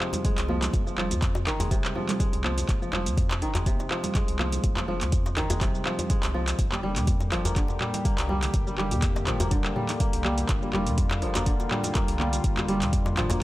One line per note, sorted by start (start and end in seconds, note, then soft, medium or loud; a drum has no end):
0.00 1.52 C3 loud
0.00 0.48 F3 medium
0.00 0.24 G#3 medium
0.00 clap medium
0.00 muted conga soft
0.13 closed hi-hat soft
0.13 djembe slap medium
0.13 djembe tone medium
0.13 low conga loud
0.13 shaker medium
0.25 1.52 G#3 loud
0.25 kick loud
0.25 closed hi-hat medium
0.25 shaker medium
0.38 0.68 C2 medium
0.38 clap loud
0.38 closed hi-hat soft
0.38 shaker soft
0.49 0.86 F3 loud
0.49 muted conga medium
0.49 djembe tone medium
0.49 high conga loud
0.62 clap medium
0.62 closed hi-hat soft
0.62 low conga medium
0.62 shaker medium
0.73 1.13 F1 medium
0.73 kick loud
0.73 closed hi-hat medium
0.73 djembe tone medium
0.73 high conga medium
0.73 shaker medium
0.87 0.97 F3 medium
0.87 muted conga medium
0.87 shaker soft
0.98 1.52 F3 loud
0.98 clap medium
0.98 low conga loud
1.10 1.48 F2 medium
1.10 closed hi-hat soft
1.10 high conga medium
1.10 djembe tone medium
1.10 shaker medium
1.22 kick loud
1.22 clap medium
1.22 closed hi-hat medium
1.22 muted conga soft
1.22 shaker medium
1.35 djembe slap loud
1.35 djembe tone medium
1.35 shaker soft
1.47 1.78 F1 medium
1.47 1.76 D#3 loud
1.47 clap loud
1.47 closed hi-hat soft
1.60 2.19 G#3 medium
1.60 closed hi-hat soft
1.60 muted conga soft
1.60 djembe slap loud
1.60 djembe bass medium
1.60 shaker medium
1.71 3.47 C3 loud
1.71 kick loud
1.71 closed hi-hat medium
1.71 djembe tone medium
1.71 low conga loud
1.71 shaker medium
1.84 1.92 F1 medium
1.84 clap loud
1.84 shaker soft
1.95 2.43 F3 loud
1.95 muted conga soft
1.95 djembe tone medium
1.95 low conga medium
2.09 clap medium
2.09 closed hi-hat soft
2.09 low conga loud
2.09 shaker medium
2.20 3.47 G#3 loud
2.20 kick loud
2.20 closed hi-hat medium
2.20 shaker medium
2.33 2.64 C2 medium
2.33 closed hi-hat soft
2.33 djembe tone medium
2.33 shaker soft
2.44 2.81 F3 loud
2.44 clap medium
2.44 muted conga medium
2.44 high conga loud
2.58 closed hi-hat soft
2.58 djembe tone medium
2.58 shaker medium
2.69 3.08 F1 loud
2.69 kick loud
2.69 clap medium
2.69 closed hi-hat medium
2.69 high conga medium
2.69 shaker medium
2.82 2.92 F3 medium
2.82 muted conga medium
2.82 shaker soft
2.93 3.47 F3 loud
2.93 clap medium
2.93 djembe tone loud
2.93 low conga loud
3.06 3.43 F2 medium
3.06 closed hi-hat soft
3.06 high conga medium
3.06 shaker medium
3.17 kick loud
3.17 closed hi-hat medium
3.17 muted conga soft
3.17 djembe tone medium
3.17 shaker medium
3.31 clap medium
3.31 djembe slap loud
3.31 shaker soft
3.42 3.74 F1 medium
3.42 3.71 D#3 loud
3.42 closed hi-hat soft
3.55 4.14 G#3 medium
3.55 clap medium
3.55 closed hi-hat soft
3.55 djembe slap loud
3.55 muted conga soft
3.55 djembe tone medium
3.55 djembe bass medium
3.55 shaker medium
3.66 5.42 C3 loud
3.66 kick loud
3.66 closed hi-hat medium
3.66 high conga medium
3.66 shaker medium
3.79 3.88 F1 medium
3.79 djembe slap medium
3.79 djembe tone medium
3.79 shaker soft
3.91 4.38 F3 loud
3.91 clap medium
3.91 muted conga soft
4.04 closed hi-hat soft
4.04 djembe slap medium
4.04 low conga loud
4.04 shaker medium
4.15 5.42 G#3 loud
4.15 kick loud
4.15 clap medium
4.15 closed hi-hat medium
4.15 djembe tone loud
4.15 shaker medium
4.28 4.59 C2 medium
4.28 closed hi-hat soft
4.28 shaker soft
4.39 4.76 F3 loud
4.39 clap medium
4.39 muted conga soft
4.39 high conga loud
4.39 djembe tone medium
4.52 closed hi-hat soft
4.52 low conga medium
4.52 shaker medium
4.64 5.03 F1 loud
4.64 kick loud
4.64 closed hi-hat medium
4.64 high conga medium
4.64 shaker medium
4.76 4.87 F3 medium
4.76 clap medium
4.76 muted conga soft
4.76 djembe tone loud
4.76 shaker soft
4.88 5.42 F3 loud
4.88 low conga loud
5.01 5.38 F2 medium
5.01 clap medium
5.01 closed hi-hat soft
5.01 high conga medium
5.01 djembe tone medium
5.01 shaker medium
5.12 kick loud
5.12 closed hi-hat medium
5.12 muted conga soft
5.12 shaker medium
5.26 djembe slap loud
5.26 shaker soft
5.37 5.69 F1 medium
5.37 5.66 D#3 loud
5.37 clap medium
5.37 closed hi-hat soft
5.37 djembe tone medium
5.50 6.09 G#3 medium
5.50 closed hi-hat soft
5.50 djembe slap loud
5.50 muted conga medium
5.50 djembe bass medium
5.50 shaker medium
5.61 6.64 C3 loud
5.61 kick loud
5.61 clap medium
5.61 closed hi-hat medium
5.61 djembe tone medium
5.61 low conga loud
5.61 shaker medium
5.74 5.82 F1 medium
5.74 shaker soft
5.85 6.33 F3 loud
5.85 clap medium
5.85 muted conga soft
5.85 low conga medium
5.99 closed hi-hat soft
5.99 djembe tone medium
5.99 low conga loud
5.99 shaker medium
6.10 6.64 G#3 medium
6.10 kick loud
6.10 closed hi-hat medium
6.10 shaker medium
6.23 6.54 C2 medium
6.23 clap medium
6.23 closed hi-hat soft
6.23 djembe tone medium
6.23 shaker soft
6.34 6.64 F3 loud
6.34 muted conga soft
6.34 high conga loud
6.48 clap medium
6.48 closed hi-hat soft
6.48 shaker medium
6.59 6.98 F1 loud
6.59 13.43 D3 medium
6.59 13.43 G3 medium
6.59 13.43 A#3 medium
6.59 10.45 G4 medium
6.59 kick loud
6.59 closed hi-hat medium
6.59 high conga medium
6.59 shaker medium
6.72 6.82 G3 medium
6.72 clap medium
6.72 muted conga medium
6.72 djembe tone medium
6.72 shaker soft
6.83 7.61 G3 loud
6.83 low conga loud
6.96 7.33 F2 medium
6.96 clap medium
6.96 closed hi-hat soft
6.96 mid tom medium
6.96 high conga medium
6.96 shaker medium
7.07 kick loud
7.07 closed hi-hat medium
7.07 muted conga soft
7.07 djembe tone medium
7.07 shaker medium
7.21 djembe slap medium
7.21 shaker soft
7.31 7.64 F1 medium
7.31 7.61 F3 loud
7.31 clap medium
7.31 closed hi-hat soft
7.31 djembe tone medium
7.45 8.05 A#3 medium
7.45 closed hi-hat soft
7.45 djembe slap loud
7.45 muted conga soft
7.45 djembe bass medium
7.45 shaker medium
7.56 9.50 D3 loud
7.56 kick loud
7.56 clap medium
7.56 closed hi-hat medium
7.56 high conga medium
7.56 shaker medium
7.68 7.78 F1 medium
7.68 djembe slap medium
7.68 djembe tone loud
7.68 shaker soft
7.81 8.28 G3 loud
7.81 clap medium
7.81 mid tom medium
7.81 muted conga soft
7.93 closed hi-hat soft
7.93 djembe slap medium
7.93 djembe tone medium
7.93 low conga medium
7.93 shaker medium
8.05 9.40 A#3 loud
8.05 kick loud
8.05 closed hi-hat medium
8.05 shaker medium
8.18 8.49 C2 medium
8.18 clap medium
8.18 closed hi-hat medium
8.18 shaker soft
8.29 8.66 G3 loud
8.29 muted conga soft
8.29 djembe tone medium
8.29 high conga medium
8.43 clap medium
8.43 closed hi-hat soft
8.43 low conga medium
8.43 shaker medium
8.53 8.93 F1 loud
8.53 kick loud
8.53 closed hi-hat medium
8.53 djembe tone medium
8.53 high conga medium
8.53 shaker medium
8.67 8.77 G3 medium
8.67 muted conga medium
8.67 shaker soft
8.78 9.57 G3 loud
8.78 clap medium
8.78 low conga medium
8.91 9.29 F2 medium
8.91 closed hi-hat soft
8.91 mid tom medium
8.91 high conga medium
8.91 djembe tone medium
8.91 shaker medium
9.02 kick loud
9.02 clap medium
9.02 closed hi-hat medium
9.02 muted conga soft
9.02 shaker medium
9.16 djembe slap loud
9.16 djembe tone medium
9.16 shaker soft
9.27 9.59 F1 medium
9.27 9.57 F3 loud
9.27 clap medium
9.27 closed hi-hat soft
9.27 mid tom medium
9.40 10.00 A#3 medium
9.40 closed hi-hat soft
9.40 muted conga medium
9.40 djembe slap medium
9.40 djembe bass medium
9.40 shaker medium
9.51 11.45 D3 loud
9.51 kick loud
9.51 closed hi-hat medium
9.51 djembe tone medium
9.51 low conga medium
9.51 shaker medium
9.64 9.73 F1 medium
9.64 clap medium
9.64 shaker soft
9.76 10.23 G3 loud
9.76 mid tom medium
9.76 muted conga soft
9.76 djembe tone medium
9.76 low conga medium
9.89 clap medium
9.89 closed hi-hat soft
9.89 low conga loud
9.89 shaker medium
10.00 11.35 A#3 loud
10.00 kick loud
10.00 closed hi-hat medium
10.00 shaker medium
10.13 10.44 C2 medium
10.13 closed hi-hat medium
10.13 djembe tone medium
10.13 shaker soft
10.24 10.61 G3 loud
10.24 clap medium
10.24 muted conga soft
10.24 high conga loud
10.38 closed hi-hat soft
10.38 djembe tone medium
10.38 shaker medium
10.49 10.88 F1 loud
10.49 13.43 F4 medium
10.49 kick loud
10.49 clap medium
10.49 closed hi-hat medium
10.49 shaker medium
10.62 10.72 G3 medium
10.62 muted conga soft
10.62 shaker soft
10.73 11.52 G3 loud
10.73 clap medium
10.73 djembe tone medium
10.73 low conga loud
10.87 11.24 F2 medium
10.87 closed hi-hat soft
10.87 mid tom medium
10.87 high conga medium
10.87 shaker medium
10.98 kick loud
10.98 closed hi-hat medium
10.98 muted conga soft
10.98 djembe tone medium
10.98 shaker medium
11.11 clap medium
11.11 djembe slap loud
11.11 shaker soft
11.22 11.54 F1 medium
11.22 11.52 F3 loud
11.22 closed hi-hat soft
11.35 11.95 A#3 medium
11.35 clap medium
11.35 closed hi-hat soft
11.35 djembe slap loud
11.35 muted conga medium
11.35 djembe tone medium
11.35 djembe bass medium
11.35 shaker medium
11.46 13.40 D3 loud
11.46 kick loud
11.46 closed hi-hat medium
11.46 high conga medium
11.46 shaker medium
11.60 11.68 F1 medium
11.60 djembe slap medium
11.60 djembe tone medium
11.60 shaker soft
11.70 12.19 G3 loud
11.70 clap medium
11.70 mid tom medium
11.70 muted conga soft
11.84 closed hi-hat soft
11.84 djembe slap medium
11.84 low conga loud
11.84 shaker medium
11.95 13.30 A#3 loud
11.95 kick loud
11.95 clap medium
11.95 closed hi-hat medium
11.95 djembe tone medium
11.95 shaker medium
12.08 12.39 C2 medium
12.08 closed hi-hat medium
12.08 shaker soft
12.19 12.56 G3 loud
12.19 clap medium
12.19 muted conga soft
12.19 djembe tone medium
12.19 high conga loud
12.33 closed hi-hat soft
12.33 low conga medium
12.33 shaker medium
12.43 12.83 F1 medium
12.43 kick loud
12.43 closed hi-hat medium
12.43 high conga medium
12.43 shaker medium
12.57 12.67 G3 medium
12.57 clap medium
12.57 muted conga medium
12.57 djembe tone medium
12.57 shaker soft
12.68 13.43 G3 loud
12.68 closed hi-hat soft
12.68 low conga loud
12.81 13.19 F2 medium
12.81 clap medium
12.81 closed hi-hat soft
12.81 mid tom medium
12.81 djembe tone medium
12.81 high conga medium
12.81 shaker medium
12.93 kick loud
12.93 closed hi-hat medium
12.93 muted conga soft
12.93 shaker medium
13.06 djembe slap loud
13.06 shaker soft
13.17 13.43 F1 medium
13.17 13.43 F3 loud
13.17 clap medium
13.17 closed hi-hat soft
13.17 mid tom medium
13.17 djembe tone medium
13.30 13.43 A#3 medium
13.30 closed hi-hat soft
13.30 djembe slap loud
13.30 muted conga medium
13.30 djembe bass loud
13.30 shaker medium